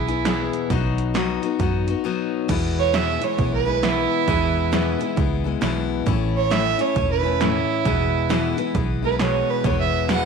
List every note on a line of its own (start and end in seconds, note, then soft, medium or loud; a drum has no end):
0.00 0.48 B1 medium
0.00 0.67 E4 medium
0.08 0.25 E3 soft
0.08 0.25 B3 medium
0.08 0.26 E4 medium
0.08 0.25 G#4 medium
0.08 closed hi-hat medium
0.25 0.70 E2 medium
0.25 0.69 B2 medium
0.25 0.70 E3 medium
0.25 0.71 B3 medium
0.25 0.71 E4 medium
0.25 0.71 G#4 medium
0.25 snare loud
0.25 closed hi-hat medium
0.53 closed hi-hat medium
0.70 1.37 B1 medium
0.70 1.13 B2 medium
0.70 1.14 F#3 medium
0.70 1.14 B3 medium
0.70 1.15 D#4 medium
0.70 1.15 F#4 medium
0.70 kick loud
0.70 closed hi-hat medium
0.98 closed hi-hat medium
1.14 1.42 B2 medium
1.14 1.43 F#3 medium
1.14 1.43 B3 medium
1.14 1.43 D#4 medium
1.14 1.41 F#4 medium
1.14 snare loud
1.14 closed hi-hat medium
1.42 1.59 B3 soft
1.42 1.60 D#4 soft
1.42 1.59 F#4 medium
1.42 closed hi-hat soft
1.59 1.93 F#2 medium
1.59 1.87 F#3 medium
1.59 1.88 B3 medium
1.59 1.88 D#4 medium
1.59 1.86 F#4 medium
1.59 kick loud
1.59 closed hi-hat medium
1.87 2.04 B3 soft
1.87 2.04 D#4 medium
1.87 2.04 F#4 soft
1.87 closed hi-hat medium
2.04 2.48 B2 medium
2.04 2.49 F#3 medium
2.04 2.49 B3 medium
2.04 2.50 D#4 medium
2.04 2.50 F#4 medium
2.48 2.92 E2 medium
2.48 3.16 E2 medium
2.48 2.92 B2 medium
2.48 2.94 E3 medium
2.48 2.94 G#3 medium
2.48 2.94 B3 medium
2.48 2.95 E4 medium
2.48 kick loud
2.48 closed hi-hat medium
2.48 crash medium
2.79 2.95 C#5 loud
2.93 3.21 E2 medium
2.93 3.22 B2 medium
2.93 3.22 E3 medium
2.93 3.22 G#3 medium
2.93 3.21 B3 medium
2.93 3.19 E4 medium
2.93 3.25 E5 medium
2.93 snare loud
2.93 closed hi-hat medium
3.21 3.36 E3 soft
3.21 3.37 G#3 soft
3.21 3.39 B3 soft
3.21 3.38 E4 medium
3.21 3.53 C#5 medium
3.21 closed hi-hat medium
3.38 4.06 B1 medium
3.38 3.66 E3 medium
3.38 3.67 G#3 medium
3.38 3.66 B3 medium
3.38 3.65 E4 medium
3.38 kick medium
3.38 closed hi-hat medium
3.53 3.85 B4 medium
3.66 3.82 E3 soft
3.66 3.83 G#3 soft
3.66 3.83 B3 soft
3.66 3.83 E4 medium
3.82 4.26 E2 medium
3.82 4.27 B2 medium
3.82 4.28 E3 medium
3.82 4.28 G#3 medium
3.82 4.28 B3 medium
3.82 5.13 E4 loud
3.82 4.29 E4 medium
3.82 snare loud
3.82 closed hi-hat medium
4.28 4.71 E2 medium
4.28 4.95 E2 loud
4.28 4.71 B2 medium
4.28 4.72 E3 medium
4.28 4.72 G#3 medium
4.28 4.72 B3 medium
4.28 4.74 E4 medium
4.28 kick loud
4.28 closed hi-hat medium
4.72 5.00 E2 medium
4.72 5.00 B2 loud
4.72 5.01 E3 medium
4.72 5.00 G#3 loud
4.72 4.99 B3 medium
4.72 4.98 E4 medium
4.72 snare loud
4.72 closed hi-hat medium
4.99 5.15 E3 soft
4.99 5.16 G#3 soft
4.99 5.17 B3 medium
4.99 5.17 E4 medium
4.99 closed hi-hat medium
5.16 5.55 C#2 medium
5.16 5.45 E3 medium
5.16 5.45 G#3 medium
5.16 5.44 B3 medium
5.16 5.43 E4 medium
5.16 kick loud
5.16 closed hi-hat medium
5.44 5.61 E3 soft
5.44 5.61 G#3 medium
5.44 5.62 B3 medium
5.44 5.62 E4 medium
5.61 6.00 B1 medium
5.61 6.06 E2 medium
5.61 6.06 B2 medium
5.61 6.06 E3 medium
5.61 6.07 G#3 medium
5.61 6.07 B3 medium
5.61 6.08 E4 loud
5.61 snare loud
5.61 closed hi-hat medium
6.06 6.74 A1 medium
6.06 6.49 A2 medium
6.06 6.51 E3 medium
6.06 6.51 A3 medium
6.06 6.51 C#4 medium
6.06 6.53 E4 medium
6.06 kick loud
6.06 closed hi-hat medium
6.37 6.53 C#5 medium
6.51 6.79 A2 medium
6.51 6.79 E3 medium
6.51 6.80 A3 medium
6.51 6.79 C#4 medium
6.51 6.77 E4 medium
6.51 6.83 E5 medium
6.51 snare loud
6.51 closed hi-hat medium
6.78 6.95 A3 soft
6.78 6.96 C#4 medium
6.78 6.96 E4 medium
6.78 7.10 C#5 medium
6.78 closed hi-hat medium
6.95 7.63 E1 medium
6.95 7.23 E3 medium
6.95 7.24 A3 medium
6.95 7.24 C#4 medium
6.95 7.22 E4 medium
6.95 kick loud
6.95 closed hi-hat medium
7.11 7.42 B4 medium
7.23 7.40 A3 soft
7.23 7.41 C#4 soft
7.23 7.40 E4 medium
7.40 7.85 A2 medium
7.40 7.86 E3 medium
7.40 7.86 A3 medium
7.40 7.86 C#4 medium
7.40 8.71 E4 medium
7.40 7.87 E4 medium
7.40 snare loud
7.40 closed hi-hat medium
7.85 8.52 E1 medium
7.85 8.28 E2 medium
7.85 8.29 B2 medium
7.85 8.30 E3 medium
7.85 8.30 G#3 medium
7.85 8.30 B3 medium
7.85 8.31 E4 medium
7.85 kick medium
7.85 closed hi-hat medium
8.29 8.58 E2 medium
8.29 8.58 B2 medium
8.29 8.58 E3 medium
8.29 8.58 G#3 medium
8.29 8.57 B3 medium
8.29 8.56 E4 loud
8.29 snare loud
8.29 closed hi-hat medium
8.57 8.73 E3 soft
8.57 8.74 G#3 soft
8.57 8.75 B3 medium
8.57 8.75 E4 medium
8.57 closed hi-hat medium
8.74 9.42 B1 medium
8.74 9.03 E3 medium
8.74 9.03 G#3 medium
8.74 9.02 B3 medium
8.74 9.01 E4 medium
8.74 kick loud
8.74 closed hi-hat medium
9.02 9.19 E3 soft
9.02 9.20 G#3 soft
9.02 9.20 B3 soft
9.02 9.20 E4 soft
9.02 9.19 B4 medium
9.19 9.63 E2 medium
9.19 9.63 B2 medium
9.19 9.64 E3 medium
9.19 9.64 G#3 medium
9.19 9.65 B3 medium
9.19 9.66 E4 medium
9.19 9.51 C#5 medium
9.19 snare loud
9.19 closed hi-hat medium
9.50 9.66 B4 medium
9.64 10.25 E1 medium
9.64 10.07 E2 medium
9.64 10.08 B2 medium
9.64 10.09 E3 medium
9.64 10.09 G#3 medium
9.64 10.09 B3 medium
9.64 10.10 E4 medium
9.64 9.79 C#5 medium
9.64 kick loud
9.64 closed hi-hat medium
9.80 10.09 E5 medium
10.09 10.25 E2 medium
10.09 10.25 B2 medium
10.09 10.25 E3 medium
10.09 10.25 G#3 medium
10.09 10.25 B3 medium
10.09 10.25 E4 medium
10.09 10.25 F#5 medium
10.09 snare loud
10.09 closed hi-hat medium